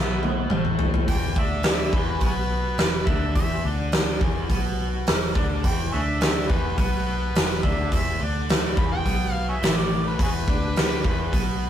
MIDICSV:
0, 0, Header, 1, 5, 480
1, 0, Start_track
1, 0, Tempo, 569260
1, 915, Time_signature, 4, 2, 24, 8
1, 9863, End_track
2, 0, Start_track
2, 0, Title_t, "Harmonica"
2, 0, Program_c, 0, 22
2, 0, Note_on_c, 0, 76, 127
2, 418, Note_off_c, 0, 76, 0
2, 927, Note_on_c, 0, 79, 113
2, 1172, Note_on_c, 0, 76, 95
2, 1185, Note_off_c, 0, 79, 0
2, 1397, Note_off_c, 0, 76, 0
2, 1416, Note_on_c, 0, 76, 92
2, 1661, Note_on_c, 0, 71, 103
2, 1674, Note_off_c, 0, 76, 0
2, 1881, Note_off_c, 0, 71, 0
2, 1901, Note_on_c, 0, 66, 73
2, 1901, Note_on_c, 0, 68, 73
2, 1901, Note_on_c, 0, 71, 104
2, 1957, Note_off_c, 0, 68, 0
2, 1959, Note_off_c, 0, 66, 0
2, 2587, Note_on_c, 0, 76, 86
2, 2600, Note_off_c, 0, 71, 0
2, 2823, Note_off_c, 0, 76, 0
2, 2830, Note_on_c, 0, 76, 95
2, 3065, Note_off_c, 0, 76, 0
2, 4773, Note_on_c, 0, 79, 104
2, 4991, Note_off_c, 0, 79, 0
2, 4996, Note_on_c, 0, 68, 68
2, 4996, Note_on_c, 0, 73, 68
2, 4996, Note_on_c, 0, 76, 98
2, 5056, Note_off_c, 0, 73, 0
2, 5066, Note_off_c, 0, 68, 0
2, 5228, Note_off_c, 0, 76, 0
2, 5245, Note_on_c, 0, 68, 67
2, 5245, Note_on_c, 0, 73, 67
2, 5245, Note_on_c, 0, 76, 96
2, 5301, Note_off_c, 0, 73, 0
2, 5311, Note_off_c, 0, 68, 0
2, 5469, Note_on_c, 0, 71, 105
2, 5482, Note_off_c, 0, 76, 0
2, 5704, Note_off_c, 0, 71, 0
2, 5721, Note_on_c, 0, 71, 93
2, 6415, Note_off_c, 0, 71, 0
2, 6429, Note_on_c, 0, 76, 92
2, 6663, Note_off_c, 0, 76, 0
2, 6682, Note_on_c, 0, 76, 111
2, 6910, Note_off_c, 0, 76, 0
2, 7406, Note_on_c, 0, 83, 97
2, 7511, Note_off_c, 0, 83, 0
2, 7522, Note_on_c, 0, 79, 122
2, 7859, Note_off_c, 0, 79, 0
2, 7859, Note_on_c, 0, 77, 122
2, 7982, Note_off_c, 0, 77, 0
2, 8000, Note_on_c, 0, 68, 59
2, 8000, Note_on_c, 0, 73, 59
2, 8000, Note_on_c, 0, 76, 85
2, 8051, Note_off_c, 0, 73, 0
2, 8067, Note_off_c, 0, 68, 0
2, 8234, Note_on_c, 0, 74, 97
2, 8247, Note_off_c, 0, 76, 0
2, 8466, Note_off_c, 0, 74, 0
2, 8490, Note_on_c, 0, 71, 88
2, 8593, Note_off_c, 0, 71, 0
2, 8620, Note_on_c, 0, 66, 77
2, 8620, Note_on_c, 0, 68, 77
2, 8620, Note_on_c, 0, 71, 111
2, 8681, Note_off_c, 0, 66, 0
2, 8693, Note_off_c, 0, 68, 0
2, 9863, Note_off_c, 0, 71, 0
2, 9863, End_track
3, 0, Start_track
3, 0, Title_t, "Overdriven electric guitar"
3, 0, Program_c, 1, 29
3, 0, Note_on_c, 1, 47, 89
3, 0, Note_on_c, 1, 59, 96
3, 427, Note_off_c, 1, 47, 0
3, 432, Note_off_c, 1, 59, 0
3, 437, Note_on_c, 1, 45, 86
3, 442, Note_on_c, 1, 57, 96
3, 909, Note_off_c, 1, 45, 0
3, 909, Note_on_c, 1, 40, 90
3, 911, Note_off_c, 1, 57, 0
3, 917, Note_on_c, 1, 52, 104
3, 1145, Note_off_c, 1, 40, 0
3, 1149, Note_off_c, 1, 52, 0
3, 1151, Note_on_c, 1, 50, 89
3, 1155, Note_on_c, 1, 62, 97
3, 1625, Note_off_c, 1, 50, 0
3, 1628, Note_off_c, 1, 62, 0
3, 1630, Note_on_c, 1, 40, 93
3, 1639, Note_on_c, 1, 52, 109
3, 1864, Note_on_c, 1, 47, 94
3, 1865, Note_off_c, 1, 40, 0
3, 1869, Note_off_c, 1, 52, 0
3, 1875, Note_on_c, 1, 59, 101
3, 2342, Note_off_c, 1, 47, 0
3, 2347, Note_off_c, 1, 59, 0
3, 2350, Note_on_c, 1, 40, 62
3, 2544, Note_off_c, 1, 40, 0
3, 2582, Note_on_c, 1, 50, 84
3, 2593, Note_on_c, 1, 62, 97
3, 2821, Note_off_c, 1, 50, 0
3, 2826, Note_off_c, 1, 62, 0
3, 2829, Note_on_c, 1, 40, 96
3, 2837, Note_on_c, 1, 52, 110
3, 3064, Note_off_c, 1, 40, 0
3, 3067, Note_on_c, 1, 50, 79
3, 3068, Note_off_c, 1, 52, 0
3, 3071, Note_on_c, 1, 62, 82
3, 3541, Note_on_c, 1, 40, 92
3, 3543, Note_off_c, 1, 50, 0
3, 3545, Note_off_c, 1, 62, 0
3, 3548, Note_on_c, 1, 52, 107
3, 3780, Note_off_c, 1, 40, 0
3, 3784, Note_off_c, 1, 52, 0
3, 3784, Note_on_c, 1, 47, 90
3, 3789, Note_on_c, 1, 59, 90
3, 4261, Note_off_c, 1, 47, 0
3, 4264, Note_off_c, 1, 59, 0
3, 4274, Note_on_c, 1, 40, 71
3, 4466, Note_off_c, 1, 40, 0
3, 4510, Note_on_c, 1, 50, 82
3, 4516, Note_on_c, 1, 62, 109
3, 4744, Note_off_c, 1, 50, 0
3, 4748, Note_off_c, 1, 62, 0
3, 4748, Note_on_c, 1, 40, 96
3, 4756, Note_on_c, 1, 52, 98
3, 4983, Note_off_c, 1, 40, 0
3, 4987, Note_off_c, 1, 52, 0
3, 4993, Note_on_c, 1, 50, 84
3, 5002, Note_on_c, 1, 62, 101
3, 5461, Note_on_c, 1, 40, 90
3, 5466, Note_off_c, 1, 50, 0
3, 5470, Note_off_c, 1, 62, 0
3, 5470, Note_on_c, 1, 52, 106
3, 5699, Note_on_c, 1, 47, 91
3, 5700, Note_off_c, 1, 40, 0
3, 5704, Note_off_c, 1, 52, 0
3, 5709, Note_on_c, 1, 59, 112
3, 6178, Note_off_c, 1, 47, 0
3, 6183, Note_off_c, 1, 59, 0
3, 6186, Note_on_c, 1, 40, 67
3, 6381, Note_off_c, 1, 40, 0
3, 6434, Note_on_c, 1, 50, 84
3, 6439, Note_on_c, 1, 62, 97
3, 6666, Note_off_c, 1, 50, 0
3, 6668, Note_off_c, 1, 62, 0
3, 6674, Note_on_c, 1, 40, 99
3, 6680, Note_on_c, 1, 52, 100
3, 6906, Note_off_c, 1, 40, 0
3, 6909, Note_off_c, 1, 52, 0
3, 6916, Note_on_c, 1, 50, 98
3, 6923, Note_on_c, 1, 62, 95
3, 7387, Note_off_c, 1, 50, 0
3, 7390, Note_off_c, 1, 62, 0
3, 7393, Note_on_c, 1, 40, 98
3, 7398, Note_on_c, 1, 52, 104
3, 7625, Note_off_c, 1, 40, 0
3, 7628, Note_off_c, 1, 52, 0
3, 7632, Note_on_c, 1, 47, 92
3, 7637, Note_on_c, 1, 59, 97
3, 8105, Note_off_c, 1, 47, 0
3, 8107, Note_off_c, 1, 59, 0
3, 8110, Note_on_c, 1, 45, 87
3, 8118, Note_on_c, 1, 57, 102
3, 8584, Note_off_c, 1, 45, 0
3, 8588, Note_off_c, 1, 57, 0
3, 8590, Note_on_c, 1, 40, 94
3, 8596, Note_on_c, 1, 52, 107
3, 8824, Note_off_c, 1, 40, 0
3, 8827, Note_off_c, 1, 52, 0
3, 8829, Note_on_c, 1, 50, 90
3, 8836, Note_on_c, 1, 62, 104
3, 9303, Note_off_c, 1, 50, 0
3, 9307, Note_off_c, 1, 62, 0
3, 9311, Note_on_c, 1, 40, 106
3, 9316, Note_on_c, 1, 52, 107
3, 9544, Note_off_c, 1, 40, 0
3, 9546, Note_on_c, 1, 47, 96
3, 9547, Note_off_c, 1, 52, 0
3, 9554, Note_on_c, 1, 59, 113
3, 9863, Note_off_c, 1, 47, 0
3, 9863, Note_off_c, 1, 59, 0
3, 9863, End_track
4, 0, Start_track
4, 0, Title_t, "Fingered electric bass"
4, 0, Program_c, 2, 33
4, 0, Note_on_c, 2, 35, 98
4, 394, Note_off_c, 2, 35, 0
4, 423, Note_on_c, 2, 33, 102
4, 875, Note_off_c, 2, 33, 0
4, 914, Note_on_c, 2, 28, 99
4, 1138, Note_off_c, 2, 28, 0
4, 1148, Note_on_c, 2, 38, 85
4, 1597, Note_off_c, 2, 38, 0
4, 1628, Note_on_c, 2, 28, 86
4, 1854, Note_off_c, 2, 28, 0
4, 1871, Note_on_c, 2, 35, 97
4, 2319, Note_off_c, 2, 35, 0
4, 2345, Note_on_c, 2, 28, 75
4, 2573, Note_off_c, 2, 28, 0
4, 2589, Note_on_c, 2, 38, 96
4, 2814, Note_off_c, 2, 38, 0
4, 2830, Note_on_c, 2, 28, 89
4, 3055, Note_off_c, 2, 28, 0
4, 3069, Note_on_c, 2, 38, 94
4, 3518, Note_off_c, 2, 38, 0
4, 3552, Note_on_c, 2, 28, 85
4, 3776, Note_off_c, 2, 28, 0
4, 3792, Note_on_c, 2, 35, 93
4, 4239, Note_off_c, 2, 35, 0
4, 4285, Note_on_c, 2, 28, 75
4, 4503, Note_off_c, 2, 28, 0
4, 4515, Note_on_c, 2, 38, 89
4, 4737, Note_off_c, 2, 38, 0
4, 4756, Note_on_c, 2, 28, 104
4, 4978, Note_off_c, 2, 28, 0
4, 4999, Note_on_c, 2, 38, 85
4, 5442, Note_off_c, 2, 38, 0
4, 5480, Note_on_c, 2, 28, 85
4, 5700, Note_off_c, 2, 28, 0
4, 5717, Note_on_c, 2, 35, 100
4, 6161, Note_off_c, 2, 35, 0
4, 6204, Note_on_c, 2, 28, 85
4, 6422, Note_off_c, 2, 28, 0
4, 6434, Note_on_c, 2, 38, 84
4, 6656, Note_off_c, 2, 38, 0
4, 6674, Note_on_c, 2, 28, 98
4, 6897, Note_off_c, 2, 28, 0
4, 6915, Note_on_c, 2, 38, 81
4, 7360, Note_off_c, 2, 38, 0
4, 7398, Note_on_c, 2, 28, 83
4, 7619, Note_off_c, 2, 28, 0
4, 7636, Note_on_c, 2, 35, 97
4, 8080, Note_off_c, 2, 35, 0
4, 8114, Note_on_c, 2, 33, 100
4, 8559, Note_off_c, 2, 33, 0
4, 8594, Note_on_c, 2, 28, 95
4, 8816, Note_off_c, 2, 28, 0
4, 8835, Note_on_c, 2, 38, 81
4, 9280, Note_off_c, 2, 38, 0
4, 9315, Note_on_c, 2, 28, 85
4, 9537, Note_off_c, 2, 28, 0
4, 9555, Note_on_c, 2, 35, 92
4, 9863, Note_off_c, 2, 35, 0
4, 9863, End_track
5, 0, Start_track
5, 0, Title_t, "Drums"
5, 193, Note_on_c, 9, 48, 66
5, 277, Note_off_c, 9, 48, 0
5, 421, Note_on_c, 9, 47, 91
5, 505, Note_off_c, 9, 47, 0
5, 546, Note_on_c, 9, 45, 68
5, 630, Note_off_c, 9, 45, 0
5, 664, Note_on_c, 9, 43, 96
5, 749, Note_off_c, 9, 43, 0
5, 792, Note_on_c, 9, 43, 91
5, 876, Note_off_c, 9, 43, 0
5, 909, Note_on_c, 9, 46, 63
5, 911, Note_on_c, 9, 36, 105
5, 994, Note_off_c, 9, 46, 0
5, 995, Note_off_c, 9, 36, 0
5, 1148, Note_on_c, 9, 36, 111
5, 1233, Note_off_c, 9, 36, 0
5, 1374, Note_on_c, 9, 46, 58
5, 1385, Note_on_c, 9, 38, 116
5, 1458, Note_off_c, 9, 46, 0
5, 1469, Note_off_c, 9, 38, 0
5, 1626, Note_on_c, 9, 36, 108
5, 1710, Note_off_c, 9, 36, 0
5, 1858, Note_on_c, 9, 46, 50
5, 1866, Note_on_c, 9, 36, 100
5, 1943, Note_off_c, 9, 46, 0
5, 1950, Note_off_c, 9, 36, 0
5, 2342, Note_on_c, 9, 46, 57
5, 2353, Note_on_c, 9, 38, 120
5, 2426, Note_off_c, 9, 46, 0
5, 2437, Note_off_c, 9, 38, 0
5, 2588, Note_on_c, 9, 36, 108
5, 2672, Note_off_c, 9, 36, 0
5, 2829, Note_on_c, 9, 36, 108
5, 2829, Note_on_c, 9, 46, 55
5, 2914, Note_off_c, 9, 36, 0
5, 2914, Note_off_c, 9, 46, 0
5, 3305, Note_on_c, 9, 46, 58
5, 3315, Note_on_c, 9, 38, 116
5, 3389, Note_off_c, 9, 46, 0
5, 3400, Note_off_c, 9, 38, 0
5, 3551, Note_on_c, 9, 36, 111
5, 3635, Note_off_c, 9, 36, 0
5, 3791, Note_on_c, 9, 36, 96
5, 3791, Note_on_c, 9, 46, 54
5, 3875, Note_off_c, 9, 46, 0
5, 3876, Note_off_c, 9, 36, 0
5, 4271, Note_on_c, 9, 46, 64
5, 4282, Note_on_c, 9, 38, 124
5, 4355, Note_off_c, 9, 46, 0
5, 4366, Note_off_c, 9, 38, 0
5, 4515, Note_on_c, 9, 36, 111
5, 4599, Note_off_c, 9, 36, 0
5, 4757, Note_on_c, 9, 36, 106
5, 4759, Note_on_c, 9, 46, 66
5, 4841, Note_off_c, 9, 36, 0
5, 4843, Note_off_c, 9, 46, 0
5, 5233, Note_on_c, 9, 46, 56
5, 5244, Note_on_c, 9, 38, 108
5, 5317, Note_off_c, 9, 46, 0
5, 5328, Note_off_c, 9, 38, 0
5, 5478, Note_on_c, 9, 36, 107
5, 5562, Note_off_c, 9, 36, 0
5, 5713, Note_on_c, 9, 46, 47
5, 5716, Note_on_c, 9, 36, 93
5, 5797, Note_off_c, 9, 46, 0
5, 5800, Note_off_c, 9, 36, 0
5, 6199, Note_on_c, 9, 46, 65
5, 6210, Note_on_c, 9, 38, 113
5, 6283, Note_off_c, 9, 46, 0
5, 6294, Note_off_c, 9, 38, 0
5, 6436, Note_on_c, 9, 36, 100
5, 6521, Note_off_c, 9, 36, 0
5, 6678, Note_on_c, 9, 36, 99
5, 6682, Note_on_c, 9, 46, 62
5, 6762, Note_off_c, 9, 36, 0
5, 6766, Note_off_c, 9, 46, 0
5, 7160, Note_on_c, 9, 46, 53
5, 7171, Note_on_c, 9, 38, 112
5, 7244, Note_off_c, 9, 46, 0
5, 7255, Note_off_c, 9, 38, 0
5, 7396, Note_on_c, 9, 36, 117
5, 7480, Note_off_c, 9, 36, 0
5, 7636, Note_on_c, 9, 36, 88
5, 7639, Note_on_c, 9, 46, 55
5, 7721, Note_off_c, 9, 36, 0
5, 7723, Note_off_c, 9, 46, 0
5, 8116, Note_on_c, 9, 46, 67
5, 8127, Note_on_c, 9, 38, 112
5, 8200, Note_off_c, 9, 46, 0
5, 8211, Note_off_c, 9, 38, 0
5, 8594, Note_on_c, 9, 36, 109
5, 8599, Note_on_c, 9, 46, 64
5, 8679, Note_off_c, 9, 36, 0
5, 8683, Note_off_c, 9, 46, 0
5, 8834, Note_on_c, 9, 36, 106
5, 8919, Note_off_c, 9, 36, 0
5, 9074, Note_on_c, 9, 46, 59
5, 9085, Note_on_c, 9, 38, 102
5, 9158, Note_off_c, 9, 46, 0
5, 9169, Note_off_c, 9, 38, 0
5, 9313, Note_on_c, 9, 36, 105
5, 9397, Note_off_c, 9, 36, 0
5, 9553, Note_on_c, 9, 36, 92
5, 9555, Note_on_c, 9, 46, 51
5, 9637, Note_off_c, 9, 36, 0
5, 9640, Note_off_c, 9, 46, 0
5, 9863, End_track
0, 0, End_of_file